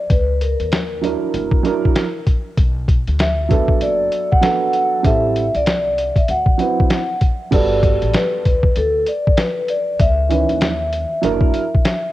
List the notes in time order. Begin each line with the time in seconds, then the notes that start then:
Already playing: D5
0.10 C#2 B4, kick, closed hi-hat
0.41 A#4, closed hi-hat
0.60 D#2, closed hi-hat
0.72 snare, closed hi-hat
1.01 F#3 D4 E4 A#4, closed hi-hat
1.34 F#1, closed hi-hat
1.51 kick
1.63 F#3 D4 E4 A#4, closed hi-hat
1.85 kick
1.96 snare, closed hi-hat
2.27 kick, closed hi-hat
2.57 B1, kick, closed hi-hat
2.88 kick, closed hi-hat
3.08 D2, closed hi-hat
3.19 E5, snare, closed hi-hat
3.49 F#3 B3 D4 A4, kick, closed hi-hat
3.68 kick
3.81 F#1 D5, closed hi-hat
4.12 closed hi-hat
4.32 F#5, kick
4.41 F#3 B3 D4 A4, snare, closed hi-hat
4.73 closed hi-hat
5.03 A1 G3 C4 E4 A4 E5, kick, closed hi-hat
5.36 closed hi-hat
5.55 C2 D5, closed hi-hat
5.66 snare, closed hi-hat
5.98 closed hi-hat
6.16 E5, kick, closed hi-hat
6.28 D2 F#5, closed hi-hat
6.46 kick
6.58 F#3 C4 E4 B4, closed hi-hat
6.80 kick
6.90 snare, closed hi-hat
7.21 kick, closed hi-hat
7.51 G1 G3 B3 F#4 A4 D5, kick, closed hi-hat, crash
7.83 kick, closed hi-hat
8.02 A1, closed hi-hat
8.14 B4, snare, closed hi-hat
8.45 D2, kick, closed hi-hat
8.63 kick
8.76 D2 A4, closed hi-hat
9.07 D5, closed hi-hat
9.27 kick
9.37 B4, snare, closed hi-hat
9.68 D5, closed hi-hat
9.99 C#2 E5, kick, closed hi-hat
10.29 D#3 E3 C#4 B4, closed hi-hat
10.49 D#2, closed hi-hat
10.61 snare, closed hi-hat
10.93 closed hi-hat
11.22 F#1 F#3 D4 E4 A#4, closed hi-hat
11.41 kick
11.54 closed hi-hat
11.75 kick
11.85 snare, closed hi-hat